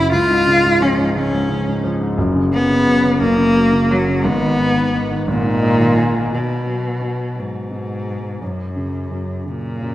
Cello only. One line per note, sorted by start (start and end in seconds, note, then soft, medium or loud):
0.00 0.12 E4 loud
0.12 0.84 F4 loud
0.82 1.15 C#4 medium
1.16 1.88 C#4 medium
2.53 3.17 B3 loud
3.22 3.92 A#3 loud
3.91 4.27 F#3 medium
4.26 5.28 B3 medium
5.29 6.36 A#2 loud
6.34 7.41 B2 medium
7.39 8.45 G#2 medium
8.44 9.50 F#2 medium
9.48 9.95 A#2 medium